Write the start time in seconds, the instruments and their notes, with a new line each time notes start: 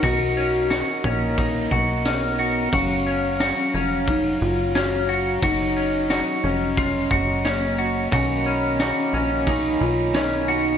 Already playing: clean electric guitar C#4 D#4, tonewheel organ D#4 A#4 A#5
0.03 analog synth bass B1, clean electric guitar F#4, soft synth lead F#4, tonewheel organ D#5, kick, ride
0.37 clean electric guitar C#4
0.70 clean electric guitar F#4, snare, ride, tambourine
1.04 analog synth bass A#1, soft synth lead A#3, clean electric guitar C#4, kick
1.38 clean electric guitar D#4, kick, ride
1.71 analog synth bass B1, clean electric guitar F#4, kick
2.05 soft synth lead B3, clean electric guitar C#4, snare, ride, tambourine
2.39 clean electric guitar F#4
2.73 analog synth bass F#1, tonewheel organ F#3 C#5 F5, soft synth lead C#4, clean electric guitar F#4, kick, ride
3.07 clean electric guitar C#4
3.40 clean electric guitar F#4, snare, ride, tambourine
3.74 analog synth bass F1, clean electric guitar C#4
4.08 soft synth lead D#4, kick, ride
4.41 analog synth bass F#1, soft synth lead F4
4.75 clean electric guitar C#4, soft synth lead F#4, snare, ride, tambourine
5.09 clean electric guitar F#4
5.42 analog synth bass F#1, soft synth lead D#4, clean electric guitar F#4, tonewheel organ D#5, kick, ride
5.77 clean electric guitar C#4
6.10 clean electric guitar F#4, snare, ride, tambourine
6.44 analog synth bass F1, clean electric guitar C#4, soft synth lead C#4
6.77 clean electric guitar F4, kick, ride
7.11 analog synth bass F#1, clean electric guitar F#4, kick
7.45 soft synth lead A#3, clean electric guitar C#4, snare, ride, tambourine
7.78 clean electric guitar F#4
8.12 analog synth bass B1, clean electric guitar B2 D#3 A#3 C#4 F#4, soft synth lead C#4, tonewheel organ C#5 D#5 A#5 B5, kick, ride
8.46 clean electric guitar C#4
8.79 clean electric guitar D#3 A#3 C#4 F#4, snare, ride, tambourine
9.13 analog synth bass A#1, clean electric guitar C#4
9.47 clean electric guitar D#3 A#3 C#4 D#4, soft synth lead D#4, kick, ride
9.81 analog synth bass B1, soft synth lead F4
10.13 clean electric guitar B2 D#3 A#3 C#4, soft synth lead D#4, snare, ride, tambourine
10.48 clean electric guitar F#4